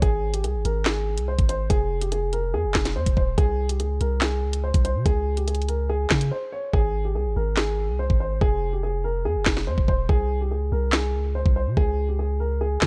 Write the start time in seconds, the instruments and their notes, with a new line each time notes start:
0.02 808-style bass G#1, grand piano G#4, kick, closed hi-hat
0.34 grand piano G4, closed hi-hat
0.44 808-style bass C2, grand piano G#4, closed hi-hat
0.55 808-style bass G#1
0.65 808-style bass G#1, grand piano A#4, closed hi-hat
0.85 grand piano G#4, snare, clap
1.18 808-style bass C2, closed hi-hat
1.28 grand piano C5
1.39 808-style bass G#1, kick, closed hi-hat
1.49 grand piano C5, closed hi-hat
1.70 808-style bass F1, grand piano G#4, kick, closed hi-hat
2.01 grand piano G4, closed hi-hat
2.12 grand piano G#4, closed hi-hat
2.33 grand piano A#4, closed hi-hat
2.54 808-style bass F2, grand piano G#4
2.64 808-style bass F1
2.74 808-style bass F1, kick, snare, clap
2.85 snare, closed hi-hat
2.96 808-style bass F2, grand piano C5
3.06 808-style bass F1, kick, closed hi-hat
3.17 808-style bass D#1, grand piano C5, kick
3.38 808-style bass C2, grand piano G#4, kick, closed hi-hat
3.69 grand piano G4, closed hi-hat
3.80 808-style bass C#2, grand piano G#4, closed hi-hat
4.01 808-style bass C2, grand piano A#4, closed hi-hat
4.21 grand piano G#4, snare, clap
4.43 808-style bass C#2
4.53 closed hi-hat
4.64 grand piano C5
4.74 808-style bass C2, kick, closed hi-hat
4.85 grand piano C5, closed hi-hat
4.95 808-style bass C3
5.06 808-style bass C#2, grand piano G#4, kick, closed hi-hat
5.37 grand piano G4, closed hi-hat
5.48 grand piano G#4, closed hi-hat
5.55 closed hi-hat
5.62 closed hi-hat
5.69 grand piano A#4, closed hi-hat
5.89 grand piano G#4
6.10 808-style bass C#3, kick, snare, clap
6.21 closed hi-hat
6.31 grand piano C5
6.52 grand piano C#5
6.73 808-style bass G#1, grand piano G#4, kick
7.05 grand piano G4
7.15 808-style bass C2, grand piano G#4
7.26 808-style bass G#1
7.36 808-style bass G#1, grand piano A#4
7.57 grand piano G#4, snare, clap
7.89 808-style bass C2
7.99 grand piano C5
8.10 808-style bass G#1, kick
8.20 grand piano C5
8.41 808-style bass F1, grand piano G#4, kick
8.73 grand piano G4
8.83 grand piano G#4
9.04 grand piano A#4
9.25 808-style bass F2, grand piano G#4
9.36 808-style bass F1
9.45 808-style bass F1, kick, snare, clap
9.57 snare
9.67 808-style bass F2, grand piano C5
9.78 808-style bass F1, kick
9.88 808-style bass D#1, grand piano C5, kick
10.09 808-style bass C2, grand piano G#4, kick
10.41 grand piano G4
10.51 808-style bass C#2, grand piano G#4
10.72 808-style bass C2, grand piano A#4
10.92 grand piano G#4, snare, clap
11.14 808-style bass C#2
11.35 grand piano C5
11.46 808-style bass C2, kick
11.56 grand piano C5
11.67 808-style bass C3
11.77 808-style bass C#2, grand piano G#4, kick
12.09 grand piano G4
12.19 grand piano G#4
12.40 grand piano A#4
12.61 grand piano G#4
12.81 808-style bass C#3, kick, snare, clap